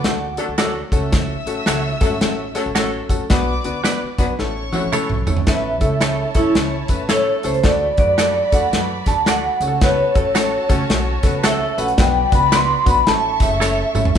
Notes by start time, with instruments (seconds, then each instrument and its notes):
Already playing: violin section D5 D6, vibraphone F#5
0.03 upright bass D2, saxophone section F#3 D4 A4, grand piano A3 D4 F#4 A4, snare, closed hi-hat, tambourine
0.37 saxophone section F#3 D4 A4, grand piano A3 D4 F#4 A4, closed hi-hat, tambourine
0.48 upright bass D2
0.58 saxophone section F#3 C#4 A4, grand piano A3 D4 F#4 A4, clean electric guitar F#4 A4 D5, snare, clap, closed hi-hat, tambourine
0.92 upright bass C#2, grand piano A3 C#4 F#4 A4, violin section E5 E6, kick, closed hi-hat, tambourine
1.12 kick, snare, closed hi-hat, tambourine
1.46 upright bass A1, grand piano A3 C#4 F#4 A4, closed hi-hat, tambourine
1.66 upright bass C#2, grand piano A3 C#4 F#4 A4, clean electric guitar F#4 A4 C#5, snare, clap, closed hi-hat, tambourine
2.01 upright bass G#1, saxophone section F#3 C#4 A4, grand piano A3 C#4 F#4 A4, kick, closed hi-hat, tambourine
2.20 upright bass A1, saxophone section F#3 C#4 A4, grand piano A3 C#4 F#4 A4, snare, closed hi-hat
2.55 saxophone section F#3 C#4 A4, grand piano A3 C#4 F#4 A4, snare, closed hi-hat, tambourine
2.66 upright bass A1
2.75 saxophone section F#3 C#4 A4, grand piano A3 C#4 F#4 A4, clean electric guitar F#4 A4 C#5, snare, clap, closed hi-hat, tambourine
3.09 upright bass A#1, grand piano A3 C#4 F#4 A4, kick, closed hi-hat, tambourine
3.30 upright bass B1, grand piano B3 D4 F#4 B4, violin section D5 D6, kick, snare, closed hi-hat, tambourine
3.64 upright bass D2, grand piano B3 D4 F#4 B4, closed hi-hat
3.84 grand piano B3 D4 F#4 B4, clean electric guitar F#4 B4 D5, snare, clap, closed hi-hat, tambourine
4.02 muted upright bass stroke
4.18 upright bass B1, saxophone section F#3 D4 B4, grand piano B3 D4 F#4 B4, kick, closed hi-hat, tambourine
4.39 upright bass A1, saxophone section E3 C#4 A4, grand piano A3 C#4 E4 A4, violin section C#5 C#6, snare
4.72 saxophone section E3 C#4 A4, grand piano A3 C#4 E4 F#4, high tom, tambourine
4.83 upright bass A1
4.92 saxophone section E3 C#4 A4, grand piano A3 C#4 E4 A4, clean electric guitar E4 A4 C#5, clap, mid tom, tambourine
5.10 upright bass B1, mid tom
5.27 upright bass G1, grand piano A3 C#4 E4 A4, floor tom, tambourine
5.37 upright bass G#1, floor tom
5.47 upright bass A1, grand piano A3 C#4 E4 A4, saxophone section B3 B4, violin section E4 C#5 A5, vibraphone E5, kick, snare, closed hi-hat, tambourine
5.81 upright bass C#2, grand piano A3 C#4 E4 A4, saxophone section A3 A4, kick, closed hi-hat, tambourine
6.01 grand piano A3 C#4 E4 G#4, saxophone section A3 A4, clean electric guitar E4 A4 C#5, snare, clap, closed hi-hat, tambourine
6.35 upright bass B1, grand piano A3 C#4 E4 A4, saxophone section C#4 C#5, vibraphone E4, kick, closed hi-hat, tambourine
6.55 upright bass C#2, grand piano A3 C#4 E4 A4, snare, closed hi-hat
6.88 upright bass A1, grand piano A3 C#4 E4 B4, saxophone section B3 B4, kick, closed hi-hat, tambourine
7.09 grand piano A3 C#4 E4 A4, saxophone section A3 A4, clean electric guitar E4 A4 C#5, vibraphone C#5, snare, clap, closed hi-hat, tambourine
7.43 upright bass C#2, grand piano A3 C#4 E4 A4, vibraphone C5, closed hi-hat, tambourine
7.54 closed hi-hat
7.63 upright bass D2, grand piano A3 D4 F#4 A4, violin section F#4 D5 B5, vibraphone D5, kick, snare, closed hi-hat, tambourine
7.98 upright bass F#2, grand piano A3 D4 F#4 B4, vibraphone D5, kick, closed hi-hat
8.18 grand piano A3 D4 F#4 A4, clean electric guitar F#4 A4 D5, snare, clap, closed hi-hat, tambourine
8.52 upright bass E2, grand piano A3 D4 F#4 A4, vibraphone F#5, kick, closed hi-hat, tambourine
8.73 upright bass F#2, grand piano A3 D4 F#4 B4, snare, closed hi-hat, tambourine
9.06 upright bass D2, grand piano A3 D4 F#4 A4, vibraphone A5, kick, snare, closed hi-hat, tambourine
9.26 grand piano A3 D4 F#4 A4, clean electric guitar F#4 A4 D5, vibraphone F#5, snare, clap, closed hi-hat, tambourine
9.60 upright bass C#2, grand piano A3 C#4 F#4 G#4, violin section F#4 C#5 A5, closed hi-hat, tambourine
9.68 grand piano A4
9.81 saxophone section B3 B4, vibraphone C#5, kick, snare, closed hi-hat, tambourine
10.15 upright bass A1, grand piano A3 C#4 F#4 A4, saxophone section A3 A4, kick, closed hi-hat
10.35 grand piano A3 C#4 F#4 A4, saxophone section A3 A4, clean electric guitar F#4 A4 C#5, snare, clap, closed hi-hat, tambourine
10.69 upright bass C#2, grand piano A3 C#4 F#4 A4, saxophone section C#4 C#5, kick, closed hi-hat, tambourine
10.89 upright bass B1, grand piano A3 C#4 F#4 A4, snare, closed hi-hat, tambourine
11.23 upright bass C#2, grand piano A3 C#4 F#4 A4, saxophone section B3 B4, kick, snare, closed hi-hat, tambourine
11.44 grand piano A3 C#4 F#4 A4, saxophone section A3 A4, clean electric guitar F#4 A4 C#5, vibraphone E5, snare, clap, closed hi-hat, tambourine
11.78 upright bass A#1, grand piano A3 C#4 F#4 B4, vibraphone F#5, closed hi-hat, tambourine
11.88 closed hi-hat
11.97 upright bass B1, grand piano B3 D4 F#4 B4, violin section F#4 D5 B5, vibraphone G5, kick, snare, closed hi-hat, tambourine
12.32 upright bass C#2, grand piano B3 D4 F#4 B4, vibraphone B5, kick, closed hi-hat, tambourine
12.52 grand piano B3 D4 F#4 B4, clean electric guitar F#4 B4 D5, vibraphone C6, snare, clap, closed hi-hat, tambourine
12.86 upright bass B1, grand piano B3 D4 F#4 B4, kick, closed hi-hat, tambourine
12.90 vibraphone B5
13.06 upright bass A1, grand piano A3 C#4 E4 A4, violin section A4 E5 C#6, vibraphone A5, snare, closed hi-hat
13.40 upright bass F#1, grand piano A3 C#4 E4 G#4, vibraphone E5, kick, snare, closed hi-hat, tambourine
13.60 grand piano A3 C#4 E4 A4, clean electric guitar E4 A4 C#5, snare, clap, tambourine
13.95 upright bass G#1, grand piano A3 C#4 E4 A4, mid tom, tambourine
14.05 floor tom